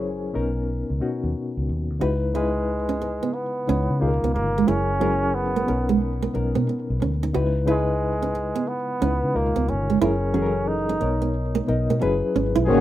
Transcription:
Already playing: fingered electric bass F#1, reed electric piano F#3 C#4 E4 G#4 A#4 C5 C#5
0.33 fingered electric bass B1, reed electric piano B2 B3 C#4 D#4 A#4
0.90 fingered electric bass C#2
1.00 reed electric piano B2 B3 C#4 D#4 F#4
1.24 fingered electric bass D#2
1.57 fingered electric bass C#2
1.69 fingered electric bass D#2
1.90 fingered electric bass D2
2.00 fingered electric bass C#2, reed electric piano C#3 G#3 D#4 E4 B4, nylon-string guitar F#4
2.34 reed electric piano C#3 G#3 D#4 E4 B4, flugelhorn G#3, nylon-string guitar E4
2.89 nylon-string guitar C#4
3.02 muted nylon-string guitar stroke
3.23 nylon-string guitar B3
3.34 flugelhorn B3
3.67 fingered electric bass C#2, reed electric piano C#3 G#3 D#4 E4 C#5, nylon-string guitar C#4
3.90 fingered electric bass C#3
4.00 fingered electric bass C#2, reed electric piano B2 C#3 G#3 D#4 F4 G#4, flugelhorn A#3
4.08 reed electric piano A#4
4.23 fingered electric bass C#2, nylon-string guitar B3
4.34 fingered electric bass G1, flugelhorn A#3, muted nylon-string guitar stroke
4.58 nylon-string guitar G#3
4.66 fingered electric bass F#1, reed electric piano F#3 C#4 E4 G#4 A#4, flugelhorn C#4, nylon-string guitar E4
5.00 reed electric piano F#3 C#4 E4 G#4 A#4, nylon-string guitar C#4
5.35 flugelhorn B3
5.56 nylon-string guitar A#3
5.67 fingered electric bass B1, reed electric piano B2 B3 C#4 D#4 A#4, muted nylon-string guitar stroke
5.89 nylon-string guitar G#3
6.22 nylon-string guitar A#3
6.33 fingered electric bass B1, reed electric piano B2 B3 C#4 D#4 A#4, muted nylon-string guitar stroke
6.55 fingered electric bass B2, nylon-string guitar B3
6.69 muted nylon-string guitar stroke
6.90 fingered electric bass B1
7.02 fingered electric bass D2, nylon-string guitar C#4
7.23 nylon-string guitar D#4
7.33 fingered electric bass C#2, reed electric piano C#3 G#3 D#4 E4 B4, nylon-string guitar F#4
7.66 reed electric piano C#3 G#3 D#4 E4 B4, flugelhorn G#3, nylon-string guitar E4
8.22 nylon-string guitar C#4
8.35 muted nylon-string guitar stroke
8.55 nylon-string guitar B3
8.68 flugelhorn B3
9.00 fingered electric bass C#2, reed electric piano C#3 G#3 D#4 E4 B4, nylon-string guitar C#4
9.24 fingered electric bass C#3
9.34 fingered electric bass C#2, reed electric piano B2 C#3 G#3 D#4 F4 A#4, flugelhorn A#3
9.56 fingered electric bass C#2, nylon-string guitar B3
9.68 fingered electric bass G1, flugelhorn C#4, muted nylon-string guitar stroke
9.90 nylon-string guitar G#3
10.00 fingered electric bass F#1, reed electric piano F#3 C#4 E4 G#4 A#4, flugelhorn C#4, nylon-string guitar E4
10.34 reed electric piano E3 F#3 C#4 G#4 A4, nylon-string guitar C#4
10.42 reed electric piano A#4
10.68 flugelhorn D#4
10.89 nylon-string guitar C#4
11.00 fingered electric bass B1, reed electric piano B2 B3 D#4 A#4 C#5, muted nylon-string guitar stroke
11.22 nylon-string guitar B3
11.55 nylon-string guitar A#3
11.67 fingered electric bass B1, reed electric piano B2 B3 D#4 A#4 D#5, muted nylon-string guitar stroke
11.90 fingered electric bass B2, nylon-string guitar A#3
12.00 fingered electric bass F#1, reed electric piano F#3 C#4 E4 G#4 B4, muted nylon-string guitar stroke
12.35 fingered electric bass G#1, nylon-string guitar C#4
12.55 fingered electric bass B1, nylon-string guitar E4
12.66 fingered electric bass G#1, analog synth pad C#3 G#3 A#3 F#4, horn section D#3 C#4 G#4, reed electric piano G#3 D#4 F#4 A#4 C5, flugelhorn C#5
12.74 reed electric piano C#5

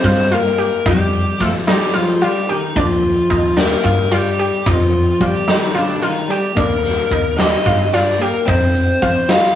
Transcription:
Already playing: clean electric guitar C4, lead electric guitar C5
0.04 fretless electric bass G2, synth arpeggio sound F4, kick, snare, closed hi-hat
0.32 clean electric guitar A#3, synth arpeggio sound F4, lead electric guitar A#4, closed hi-hat
0.58 synth arpeggio sound G4, closed hi-hat
0.86 fretless electric bass F2, clean electric guitar G3, synth arpeggio sound D#4, lead electric guitar G4, kick, closed hi-hat
1.13 closed hi-hat
1.40 fretless electric bass F3, clean electric guitar A3, synth arpeggio sound F4, lead electric guitar A4, kick, snare, closed hi-hat
1.67 clean electric guitar G3, synth arpeggio sound D#4, lead electric guitar G4, snare, closed hi-hat
1.94 clean electric guitar F3, synth arpeggio sound F4, lead electric guitar F4, closed hi-hat
2.21 clean electric guitar G3, synth arpeggio sound F4, lead electric guitar G4, closed hi-hat
2.49 clean electric guitar D#3, lead electric guitar D#4, synth arpeggio sound G4, closed hi-hat
2.76 fretless electric bass D#2, clean electric guitar F3, synth arpeggio sound D4, lead electric guitar F4, kick, closed hi-hat
3.04 closed hi-hat
3.30 fretless electric bass D#2, synth arpeggio sound D#4, kick, closed hi-hat
3.57 clean electric guitar A#3, synth arpeggio sound D4, lead electric guitar A#4, snare, closed hi-hat
3.84 fretless electric bass G2, synth arpeggio sound F4, kick, closed hi-hat
4.12 clean electric guitar G3, synth arpeggio sound F4, lead electric guitar G4, closed hi-hat
4.39 synth arpeggio sound G4, closed hi-hat
4.66 fretless electric bass F2, clean electric guitar F3, synth arpeggio sound D#4, lead electric guitar F4, kick, closed hi-hat
4.94 closed hi-hat
5.20 fretless electric bass F3, clean electric guitar G3, synth arpeggio sound F4, lead electric guitar G4, kick, closed hi-hat
5.48 clean electric guitar D#3, synth arpeggio sound D#4, lead electric guitar D#4, snare, closed hi-hat
5.75 clean electric guitar D3, synth arpeggio sound F4, closed hi-hat
5.79 lead electric guitar D4
6.00 clean electric guitar D#3, synth arpeggio sound F4, closed hi-hat
6.04 lead electric guitar D#4
6.28 clean electric guitar G3, synth arpeggio sound G4, lead electric guitar G4, closed hi-hat
6.55 fretless electric bass D#2, clean electric guitar A#3, synth arpeggio sound D4, lead electric guitar A#4, kick, closed hi-hat
6.84 snare, closed hi-hat
7.11 fretless electric bass D#2, synth arpeggio sound D#4, kick, closed hi-hat
7.36 synth arpeggio sound D4, clean electric guitar D#4, lead electric guitar D#5, snare, closed hi-hat
7.66 fretless electric bass G2, synth arpeggio sound F4, kick, snare, closed hi-hat
7.93 clean electric guitar D4, synth arpeggio sound F4, lead electric guitar D5, snare, closed hi-hat
8.19 clean electric guitar A#3, synth arpeggio sound G4, lead electric guitar A#4, closed hi-hat
8.46 fretless electric bass F2, clean electric guitar C4, synth arpeggio sound D#4, lead electric guitar C5, kick, closed hi-hat
8.75 closed hi-hat
9.02 fretless electric bass F3, synth arpeggio sound F4, kick, closed hi-hat
9.28 synth arpeggio sound D#4, clean electric guitar F4, lead electric guitar F5, snare, closed hi-hat

